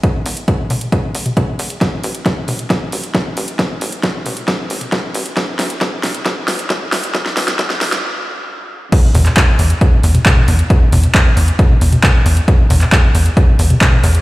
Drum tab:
CC |----------------|----------------|----------------|----------------|
HH |x-oxx-oxx-oxx-ox|x-oxx-oxx-oxx-ox|x-oxx-oxx-oxx-ox|x-oxx-oxx-oxx-ox|
CP |----------------|----------------|----------------|----------------|
SD |----------------|o---o---o---o---|o---o---o---o---|o-o-o-o-o-o-o-o-|
T2 |------o----o----|------o---------|------o----o----|------o---------|
BD |o---o---o---o---|o---o---o---o---|o---o---o---o---|o---o---o---o---|

CC |----------------|x---------------|----------------|----------------|
HH |x-oxx-ox--------|x-oxx-oxx-oxx-ox|x-oxx-oxx-oxx-ox|x-oxx-oxx-oxx-ox|
CP |----------------|---xx-------x---|----x-------x---|---xx-------x---|
SD |oooooooo--------|----------------|----------------|----------------|
T2 |------o---------|--o--------o-o--|--o------o-o----|--o--------o-o--|
BD |o---o-----------|o---o---o---o---|o---o---o---o---|o---o---o---o---|